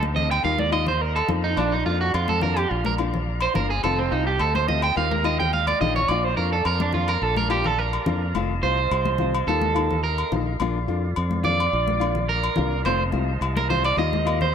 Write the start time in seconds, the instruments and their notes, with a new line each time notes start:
Already playing: fingered electric bass D2, tonewheel organ D#5 F5 A5
0.03 high conga
0.14 nylon-string guitar A3 C4, clean electric guitar D#5, low conga
0.31 clean electric guitar G5, low agogo
0.43 fingered electric bass D#2, nylon-string guitar D#3 A#3 D#4 F4, tonewheel organ D#5 A#5, clean electric guitar F5
0.58 clean electric guitar D5, high conga
0.72 nylon-string guitar A#3 D#4 F4, clean electric guitar D#5, low agogo
0.86 clean electric guitar C5, low conga
1.01 clean electric guitar A#4
1.16 clean electric guitar A4, low agogo
1.28 fingered electric bass F2, nylon-string guitar A#3 D#4 F4, low conga
1.44 clean electric guitar D#4
1.57 fingered electric bass A#1, nylon-string guitar F3 A#3 D4 F4, clean electric guitar D4, tonewheel organ D5 F5, low agogo
1.72 clean electric guitar D#4
1.86 fingered electric bass F2, nylon-string guitar A#3 D4 F4, clean electric guitar F4
2.01 clean electric guitar F#4
2.14 fingered electric bass F2, clean electric guitar F4, low agogo
2.28 clean electric guitar A4, high conga
2.41 nylon-string guitar A#3 D4 F4, clean electric guitar A#4, low conga
2.57 clean electric guitar G4, low agogo
2.71 fingered electric bass A#1, clean electric guitar F4
2.85 clean electric guitar A#4, high conga
2.98 nylon-string guitar A#3 D4 F4, low agogo
3.14 low conga
3.41 clean electric guitar C5, low agogo
3.54 fingered electric bass G1, nylon-string guitar A#3 D4 F4, clean electric guitar A#4, low conga
3.70 clean electric guitar G#4
3.83 fingered electric bass F1, nylon-string guitar D#3 A3 C4 F4, clean electric guitar A4, tonewheel organ D#5 A5, low agogo
3.99 clean electric guitar C4
4.11 fingered electric bass C2, nylon-string guitar C4 F4, clean electric guitar D#4, muted nylon-string guitar stroke
4.27 clean electric guitar G4
4.39 fingered electric bass D2, clean electric guitar A4, low agogo
4.55 clean electric guitar C5, high conga
4.68 nylon-string guitar A3 C4 F4, clean electric guitar D#5, low conga
4.82 clean electric guitar G5, low agogo
4.96 fingered electric bass D#2, nylon-string guitar D#3 A#3 D#4 F4, clean electric guitar F5, tonewheel organ F5 A#5
5.11 clean electric guitar A#4, high conga
5.24 nylon-string guitar A#3 D#4 F4, clean electric guitar D#5, low agogo
5.40 clean electric guitar G5, low conga
5.53 clean electric guitar F5, high conga
5.67 clean electric guitar D5, high conga, low agogo
5.80 fingered electric bass A#1, nylon-string guitar A#3 D#4 F4, clean electric guitar D#5, low conga
5.96 clean electric guitar C#5, low conga
6.08 fingered electric bass A#1, nylon-string guitar F3 A#3 D4 F4, clean electric guitar D5, tonewheel organ D5 A#5, low agogo
6.24 clean electric guitar C5
6.37 fingered electric bass F2, nylon-string guitar A#3 D4 F4, clean electric guitar A#4
6.53 clean electric guitar A4
6.65 fingered electric bass F2, clean electric guitar A#4, low agogo
6.80 clean electric guitar D4, high conga
6.93 nylon-string guitar A#3 D4 F4, clean electric guitar F4, low conga
7.08 clean electric guitar A#4, low agogo
7.22 fingered electric bass A#1, clean electric guitar A4
7.36 clean electric guitar A#4, high conga
7.50 nylon-string guitar A#3 D4 F4, clean electric guitar G4, low agogo
7.64 clean electric guitar A4, low conga
7.79 clean electric guitar A#4
7.93 low agogo
8.06 fingered electric bass F2, nylon-string guitar A#3 D4 F4, low conga
8.34 fingered electric bass F1, nylon-string guitar D#3 A3 C4 F4, tonewheel organ D#5 A5, low agogo
8.63 fingered electric bass C2, nylon-string guitar A3 C4 F4, clean electric guitar C5
8.91 fingered electric bass C2, low agogo
9.05 high conga
9.18 nylon-string guitar A3 C4 F4, low conga
9.35 low agogo
9.47 fingered electric bass D#2, nylon-string guitar D#3 A#3 D#4 F4, clean electric guitar A4
9.61 high conga
9.74 nylon-string guitar A#3 D#4 F4, low agogo
9.90 low conga
10.04 clean electric guitar A#4
10.18 low agogo
10.32 fingered electric bass A#1, nylon-string guitar A#3 D#4 F4, low conga
10.60 fingered electric bass A#1, nylon-string guitar F3 A#3 D4 F4, tonewheel organ D5, low agogo
10.88 fingered electric bass F2, nylon-string guitar A#3 D4 F4
11.16 fingered electric bass F2, low agogo
11.31 high conga
11.44 nylon-string guitar A#3 D4 F4, clean electric guitar D5, low conga
11.60 low agogo
11.73 fingered electric bass A#1
11.88 high conga
12.00 nylon-string guitar A#3 D4 F4, low agogo
12.15 low conga
12.29 clean electric guitar A#4
12.44 low agogo
12.56 fingered electric bass C2, nylon-string guitar A#3 D4 F4, low conga
12.85 fingered electric bass F1, nylon-string guitar D#3 A3 C4 F4, clean electric guitar C5, tonewheel organ D#5 A5, low agogo
13.12 fingered electric bass C2, nylon-string guitar A3 C4 F4, high conga
13.41 fingered electric bass C2, low agogo
13.57 clean electric guitar A#4, high conga
13.70 nylon-string guitar A3 C4 F4, clean electric guitar C5, low conga
13.84 clean electric guitar D5, low agogo
13.97 fingered electric bass D#2, nylon-string guitar D#3 A#3 D#4 F4, clean electric guitar D#5, tonewheel organ A#5
14.13 high conga
14.25 nylon-string guitar A#3 F4, muted nylon-string guitar stroke, low agogo
14.41 clean electric guitar C5, low conga